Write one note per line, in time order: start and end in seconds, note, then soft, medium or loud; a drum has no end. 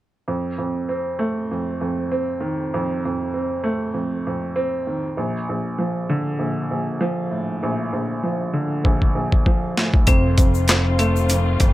0.28 0.57 F2 medium
0.58 1.50 F2 medium
0.89 2.10 C4 medium
1.19 3.62 A3 medium
1.51 1.80 F2 medium
1.81 2.72 F2 medium
2.12 3.32 C4 medium
2.40 4.86 D#3 medium
2.74 3.03 F2 medium
3.05 3.93 F2 medium
3.34 4.54 C4 medium
3.64 5.17 A3 medium
3.94 4.25 F2 medium
4.27 5.18 F2 medium
4.56 5.17 C4 loud
4.87 5.18 D#3 medium
5.17 5.48 A#1 medium
5.49 6.37 A#1 medium
5.78 6.99 F3 medium
6.09 8.52 D3 loud
6.39 6.70 A#1 medium
6.71 7.61 A#1 medium
7.00 8.22 F3 loud
7.31 9.76 A2 medium
7.63 7.91 A#1 medium
7.93 8.83 A#1 medium
8.23 9.45 F3 medium
8.53 10.07 D3 medium
8.84 9.14 A#1 medium
8.84 kick medium
9.02 kick medium
9.15 10.07 A#1 medium
9.32 kick medium
9.46 10.07 F3 medium
9.46 kick medium
9.77 10.08 A2 medium
9.77 snare loud
9.94 kick medium
10.07 11.57 F1 loud
10.07 10.36 F2 medium
10.07 11.73 D#3 medium
10.07 11.73 F3 medium
10.07 11.73 A3 medium
10.07 10.95 C4 loud
10.07 11.73 C4 medium
10.07 11.73 F4 medium
10.07 10.95 C5 medium
10.07 kick loud
10.07 closed hi-hat loud
10.07 shaker medium
10.38 11.29 F2 medium
10.38 kick medium
10.38 closed hi-hat medium
10.38 shaker medium
10.54 shaker soft
10.68 11.73 C4 medium
10.68 snare loud
10.68 clap medium
10.68 closed hi-hat medium
10.68 shaker medium
10.99 11.73 A3 loud
10.99 11.73 C4 medium
10.99 11.73 C5 medium
10.99 closed hi-hat medium
10.99 shaker medium
11.16 shaker medium
11.29 11.59 F2 medium
11.29 closed hi-hat medium
11.29 shaker medium
11.60 11.73 G1 medium
11.60 11.73 F2 medium
11.60 kick loud
11.60 closed hi-hat medium
11.60 shaker medium